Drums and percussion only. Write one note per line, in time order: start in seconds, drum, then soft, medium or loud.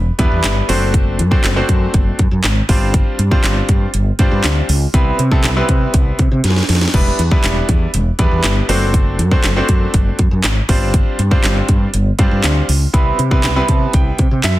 0.19 kick medium
0.19 closed hi-hat medium
0.44 snare medium
0.44 clap loud
0.44 closed hi-hat loud
0.69 open hi-hat medium
0.94 kick loud
0.94 closed hi-hat medium
1.19 closed hi-hat medium
1.32 kick loud
1.44 snare loud
1.44 clap loud
1.44 closed hi-hat medium
1.69 kick medium
1.69 closed hi-hat medium
1.94 kick loud
1.94 closed hi-hat loud
2.19 kick medium
2.19 closed hi-hat medium
2.44 snare medium
2.44 clap loud
2.44 closed hi-hat loud
2.69 kick loud
2.69 open hi-hat medium
2.94 kick loud
2.94 closed hi-hat medium
3.19 closed hi-hat medium
3.32 kick loud
3.44 snare medium
3.44 clap loud
3.44 closed hi-hat medium
3.69 kick medium
3.69 closed hi-hat medium
3.94 closed hi-hat loud
4.19 kick medium
4.19 closed hi-hat medium
4.44 snare medium
4.44 clap loud
4.44 closed hi-hat loud
4.69 open hi-hat medium
4.94 kick loud
4.94 closed hi-hat medium
5.19 closed hi-hat medium
5.32 kick loud
5.44 snare medium
5.44 clap loud
5.44 closed hi-hat medium
5.69 kick medium
5.69 closed hi-hat medium
5.94 kick loud
5.94 closed hi-hat loud
6.19 kick medium
6.19 closed hi-hat medium
6.44 snare medium
6.44 closed hi-hat loud
6.50 snare medium
6.56 snare medium
6.63 snare medium
6.69 snare medium
6.69 open hi-hat medium
6.75 snare medium
6.81 snare loud
6.88 snare loud
6.94 kick loud
6.94 crash medium
7.19 closed hi-hat medium
7.31 kick loud
7.44 snare loud
7.44 clap loud
7.44 closed hi-hat medium
7.69 kick medium
7.69 closed hi-hat medium
7.94 closed hi-hat loud
8.19 kick loud
8.19 closed hi-hat medium
8.44 snare medium
8.44 clap loud
8.44 closed hi-hat loud
8.69 open hi-hat medium
8.94 kick loud
8.94 closed hi-hat medium
9.19 closed hi-hat medium
9.31 kick loud
9.44 snare medium
9.44 clap loud
9.44 closed hi-hat medium
9.69 kick medium
9.69 closed hi-hat medium
9.94 kick loud
9.94 closed hi-hat loud
10.19 kick medium
10.19 closed hi-hat medium
10.44 snare medium
10.44 clap loud
10.44 closed hi-hat loud
10.69 kick loud
10.69 open hi-hat medium
10.94 kick loud
10.94 closed hi-hat loud
11.19 closed hi-hat medium
11.31 kick loud
11.44 snare medium
11.44 clap loud
11.44 closed hi-hat medium
11.69 kick medium
11.69 closed hi-hat medium
11.94 closed hi-hat loud
12.19 kick loud
12.19 closed hi-hat medium
12.44 snare medium
12.44 clap loud
12.44 closed hi-hat loud
12.69 open hi-hat medium
12.94 kick loud
12.94 closed hi-hat loud
13.19 closed hi-hat medium
13.31 kick medium
13.43 snare medium
13.43 clap loud
13.43 closed hi-hat medium
13.68 kick medium
13.68 closed hi-hat medium
13.93 kick loud
13.93 closed hi-hat loud
14.18 kick medium
14.18 closed hi-hat medium
14.44 snare medium
14.44 clap loud
14.44 closed hi-hat loud